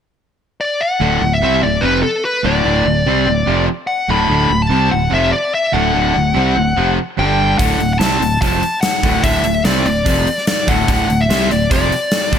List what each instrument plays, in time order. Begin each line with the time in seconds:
0.61 lead electric guitar D5
0.81 lead electric guitar F#5
1.01 fingered electric bass D1, distorted electric guitar D2 A2 D3
1.22 fingered electric bass D1, distorted electric guitar D2 A2
1.33 lead electric guitar E5
1.42 fingered electric bass C2, distorted electric guitar C3 G3 C4
1.63 fingered electric bass D1, distorted electric guitar D2 A2, lead electric guitar D5
1.81 fingered electric bass F1, distorted electric guitar F2 C3 F3, lead electric guitar B4
2.03 lead electric guitar A4
2.25 lead electric guitar B4
2.45 fingered electric bass D1, distorted electric guitar D2 A2 D3, lead electric guitar D5
2.65 fingered electric bass D1, distorted electric guitar D2 A2 D3
2.85 fingered electric bass D1, distorted electric guitar D2 A2
3.06 fingered electric bass C2, distorted electric guitar C3 G3 C4
3.27 fingered electric bass D1, distorted electric guitar D2 A2
3.47 fingered electric bass F1, distorted electric guitar F2 C3 F3
3.87 lead electric guitar F#5
4.09 fingered electric bass D1, distorted electric guitar D2 A2 D3, lead electric guitar B5
4.30 fingered electric bass D1, distorted electric guitar D2 A2 D3
4.50 fingered electric bass D1, distorted electric guitar D2 A2
4.62 lead electric guitar A5
4.70 fingered electric bass C2, distorted electric guitar C3 G3 C4
4.91 fingered electric bass D1, distorted electric guitar D2 A2, lead electric guitar F#5
5.12 fingered electric bass F1, distorted electric guitar F2 C3 F3, lead electric guitar E5
5.32 lead electric guitar D5
5.54 lead electric guitar E5
5.73 fingered electric bass D1, distorted electric guitar D2 A2 D3, lead electric guitar F#5
5.96 fingered electric bass D1, distorted electric guitar D2 A2 D3
6.16 fingered electric bass D1, distorted electric guitar D2 A2
6.36 fingered electric bass C2, distorted electric guitar C3 G3 C4
6.56 fingered electric bass D1, distorted electric guitar D2 A2
6.76 fingered electric bass F1, distorted electric guitar F2 C3 F3
7.18 fingered electric bass G1, distorted electric guitar G2 D3 G3, lead electric guitar G5
7.58 fingered electric bass D1, distorted electric guitar D2 A2 D3, lead electric guitar F#5, kick, open hi-hat
7.80 fingered electric bass D1, distorted electric guitar D2 A2, open hi-hat
7.93 lead electric guitar F#5
7.99 fingered electric bass C2, distorted electric guitar C3 G3 C4, lead electric guitar A5, snare, open hi-hat
8.21 fingered electric bass D1, distorted electric guitar D2 A2, open hi-hat
8.41 fingered electric bass F1, distorted electric guitar F2 C3 F3, lead electric guitar A5, kick, open hi-hat
8.63 open hi-hat
8.81 lead electric guitar F#5, snare, open hi-hat
9.03 fingered electric bass D1, distorted electric guitar D2 A2 D3, kick, open hi-hat
9.23 fingered electric bass D1, distorted electric guitar D2 A2 D3, lead electric guitar E5, kick, open hi-hat
9.44 fingered electric bass D1, distorted electric guitar D2 A2, open hi-hat
9.65 fingered electric bass C2, distorted electric guitar C3 G3 C4, lead electric guitar D5, snare, open hi-hat
9.86 fingered electric bass D1, distorted electric guitar D2 A2, lead electric guitar D5, open hi-hat
10.06 fingered electric bass F1, distorted electric guitar F2 C3 F3, kick, open hi-hat
10.27 open hi-hat
10.38 snare
10.47 lead electric guitar D5, snare, open hi-hat
10.68 fingered electric bass D1, distorted electric guitar D2 A2 D3, lead electric guitar F#5, kick, open hi-hat
10.88 fingered electric bass D1, distorted electric guitar D2 A2 D3, kick, open hi-hat
11.10 fingered electric bass D1, distorted electric guitar D2 A2, open hi-hat
11.21 lead electric guitar E5
11.30 fingered electric bass C2, distorted electric guitar C3 G3 C4, snare, open hi-hat
11.51 fingered electric bass D1, distorted electric guitar D2 A2, lead electric guitar D5, open hi-hat
11.71 fingered electric bass F1, distorted electric guitar F2 C3 F3, lead electric guitar D5, kick, open hi-hat
11.92 open hi-hat
12.11 snare, open hi-hat
12.33 fingered electric bass D1, distorted electric guitar D2 A2 D3, kick, open hi-hat